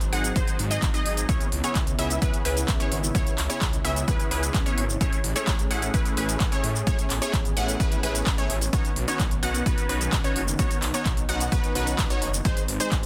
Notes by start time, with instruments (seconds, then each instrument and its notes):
Already playing: analog synth pad D#3 F#3 C4
0.01 closed hi-hat, shaker
0.13 detuned saw bass G#1, supersaw synth D#4 G#4 F#5, synth pluck F#5, open hi-hat
0.24 closed hi-hat, shaker
0.36 detuned saw bass G#1, supersaw synth D#4 G#4 C5, synth pluck C5, kick, closed hi-hat, shaker
0.48 closed hi-hat, shaker
0.59 detuned saw bass G#2, open hi-hat
0.71 supersaw synth D#4 G#4 D#5, synth pluck D#5, closed hi-hat, shaker
0.82 detuned saw bass G#1, kick, clap, closed hi-hat, shaker
0.94 supersaw synth D#4 G#4 D#5, synth pluck D#5, closed hi-hat, shaker
1.06 detuned saw bass G#1, open hi-hat
1.17 closed hi-hat, shaker
1.29 detuned saw bass C#2, analog synth pad C#3 B3 E4, supersaw synth B3 C#4 E4 G#4 C#5, synth pluck C#5, kick, closed hi-hat, shaker
1.41 closed hi-hat, shaker
1.52 detuned saw bass C#2, open hi-hat
1.64 supersaw synth B3 C#4 E4 G#4 C#5, synth pluck C#5, closed hi-hat, shaker
1.75 detuned saw bass C#2, kick, clap, closed hi-hat, shaker
1.87 closed hi-hat, shaker
1.99 detuned saw bass C#2, supersaw synth B3 C#4 E4 G#4 E5, synth pluck E5, open hi-hat
2.10 closed hi-hat, shaker
2.22 detuned saw bass C#2, supersaw synth B3 C#4 E4 G#4 B4, synth pluck B4, kick, closed hi-hat, shaker
2.34 closed hi-hat, shaker
2.45 detuned saw bass C#2, supersaw synth B3 C#4 E4 G#4 B4, synth pluck B4, open hi-hat
2.57 closed hi-hat, shaker
2.68 detuned saw bass C#2, kick, clap, closed hi-hat, shaker
2.80 supersaw synth B3 C#4 E4 G#4 C#5, synth pluck C#5, closed hi-hat, shaker
2.92 detuned saw bass G#1, open hi-hat
3.04 shaker
3.15 detuned saw bass C#2, supersaw synth B3 C#4 E4 G#4 C#5, analog synth pad C#4, synth pluck C#5, kick, closed hi-hat, shaker
3.27 closed hi-hat, shaker
3.38 detuned saw bass C#2, clap, open hi-hat
3.50 supersaw synth B3 C#4 E4 G#4 C#5, synth pluck C#5, closed hi-hat, shaker
3.61 detuned saw bass C#2, kick, clap, closed hi-hat, shaker
3.73 closed hi-hat, shaker
3.84 detuned saw bass C#2, supersaw synth B3 C#4 E4 G#4 E5, synth pluck E5, open hi-hat
3.96 closed hi-hat, shaker
4.08 detuned saw bass C#2, supersaw synth B3 C#4 E4 G#4 B4, synth pluck B4, kick, closed hi-hat, shaker
4.20 closed hi-hat, shaker
4.31 detuned saw bass C#2, supersaw synth B3 C#4 E4 G#4 B4, synth pluck B4, open hi-hat
4.43 closed hi-hat, shaker
4.54 detuned saw bass C#2, kick, clap, closed hi-hat, shaker
4.66 supersaw synth B3 C#4 E4 G#4 C#5, synth pluck C#5, closed hi-hat, shaker
4.77 detuned saw bass G#1, open hi-hat
4.90 shaker
5.01 detuned saw bass A1, supersaw synth A3 C#4 E4 G#4 C#5, analog synth pad A3 G#4, synth pluck C#5, kick, closed hi-hat, shaker
5.13 closed hi-hat, shaker
5.24 detuned saw bass A1, open hi-hat
5.36 supersaw synth A3 C#4 E4 G#4 C#5, synth pluck C#5, closed hi-hat, shaker
5.47 detuned saw bass A1, kick, clap, closed hi-hat, shaker
5.59 closed hi-hat, shaker
5.70 detuned saw bass A1, supersaw synth A3 C#4 E4 G#4 F#5, synth pluck F#5, open hi-hat
5.82 closed hi-hat, shaker
5.94 detuned saw bass A1, supersaw synth A3 C#4 E4 G#4 B4, synth pluck B4, kick, closed hi-hat, shaker
6.05 closed hi-hat, shaker
6.17 detuned saw bass A1, supersaw synth A3 C#4 E4 G#4 B4, synth pluck B4, open hi-hat
6.29 closed hi-hat, shaker
6.40 detuned saw bass A1, kick, clap, closed hi-hat, shaker
6.52 supersaw synth A3 C#4 E4 G#4 C#5, synth pluck C#5, closed hi-hat, shaker
6.64 detuned saw bass A2, open hi-hat
6.76 shaker
6.87 detuned saw bass A1, supersaw synth A3 C#4 E4 G#4 C#5, analog synth pad B3, synth pluck C#5, kick, closed hi-hat, shaker
6.99 closed hi-hat, shaker
7.10 detuned saw bass A1, clap, open hi-hat
7.22 supersaw synth A3 C#4 E4 G#4 C#5, synth pluck C#5, closed hi-hat, shaker
7.33 detuned saw bass A1, kick, clap, closed hi-hat, shaker
7.45 closed hi-hat, shaker
7.57 detuned saw bass A1, supersaw synth A3 C#4 E4 G#4 F#5, synth pluck F#5, open hi-hat
7.68 closed hi-hat, shaker
7.80 detuned saw bass A1, supersaw synth G#4 B4, synth pluck B4, kick, closed hi-hat, shaker
7.92 closed hi-hat, shaker
8.03 detuned saw bass A1, supersaw synth A3 C#4 E4 G#4 B4, synth pluck B4, open hi-hat
8.15 closed hi-hat, shaker
8.26 detuned saw bass A1, kick, clap, closed hi-hat, shaker
8.38 supersaw synth A3 C#4 E4 G#4 C#5, synth pluck C#5, closed hi-hat, shaker
8.50 detuned saw bass A1, open hi-hat
8.61 open hi-hat, shaker
8.73 detuned saw bass B1, analog synth pad D#3 B3, supersaw synth B3 C#4 D#4 F#4 C#5, synth pluck C#5, kick, closed hi-hat, shaker
8.85 closed hi-hat, shaker
8.96 detuned saw bass B1, open hi-hat
9.08 supersaw synth B3 C#4 D#4 F#4 C#5, synth pluck C#5, closed hi-hat, shaker
9.19 detuned saw bass B1, kick, clap, closed hi-hat, shaker
9.31 closed hi-hat, shaker
9.43 detuned saw bass B1, supersaw synth B3 C#4 D#4 F#4 F#5, synth pluck F#5, open hi-hat
9.54 closed hi-hat, shaker
9.66 detuned saw bass B1, supersaw synth B3 C#4 D#4 F#4 B4, synth pluck B4, kick, closed hi-hat, shaker
9.78 closed hi-hat, shaker
9.89 detuned saw bass B1, supersaw synth B3 C#4 D#4 F#4 B4, synth pluck B4, open hi-hat
10.01 closed hi-hat, shaker
10.13 detuned saw bass B1, kick, clap, closed hi-hat, shaker
10.24 supersaw synth B3 C#4 D#4 F#4 C#5, synth pluck C#5, closed hi-hat, shaker
10.36 detuned saw bass F#1, open hi-hat
10.48 shaker
10.59 detuned saw bass B1, supersaw synth B3 C#4 D#4 F#4 C#5, analog synth pad D#4, synth pluck C#5, kick, closed hi-hat, shaker
10.71 closed hi-hat, shaker
10.82 detuned saw bass B1, clap, open hi-hat
10.94 supersaw synth B3 C#4 D#4 F#4 C#5, synth pluck C#5, closed hi-hat, shaker
11.06 detuned saw bass B1, kick, clap, closed hi-hat, shaker
11.17 closed hi-hat, shaker
11.29 detuned saw bass B1, supersaw synth B3 C#4 D#4 F#4 F#5, synth pluck F#5, open hi-hat
11.40 closed hi-hat, shaker
11.52 detuned saw bass B1, supersaw synth B3 C#4 D#4 F#4 B4, synth pluck B4, kick, closed hi-hat, shaker
11.64 closed hi-hat, shaker
11.75 detuned saw bass B1, supersaw synth B3 C#4 D#4 F#4 B4, synth pluck B4, open hi-hat
11.87 closed hi-hat, shaker
11.99 detuned saw bass B1, kick, clap, closed hi-hat, shaker
12.10 supersaw synth B3 C#4 D#4 F#4 C#5, synth pluck C#5, closed hi-hat, shaker
12.22 detuned saw bass F#1, open hi-hat
12.34 shaker
12.45 detuned saw bass G#1, analog synth pad G#3 C4, supersaw synth D#4 G#4 C5, synth pluck C5, kick, closed hi-hat, shaker
12.57 closed hi-hat, shaker
12.68 detuned saw bass G#1, open hi-hat
12.80 supersaw synth D#4 G#4 C5, synth pluck C5, closed hi-hat, shaker
12.92 detuned saw bass G#1, kick, clap, closed hi-hat, shaker